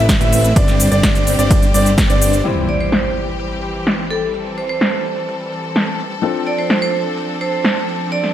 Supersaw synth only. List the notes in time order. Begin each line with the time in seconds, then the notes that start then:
0.21 A3 C4 E4 B4 E5
0.56 G3 C4 D4 C5 D5
0.92 G3 C4 D4 C5 D5
1.39 G3 C4 D4 C5 D5
1.74 G3 C4 D4 C5 D5
2.10 G3 C4 D4 C5 D5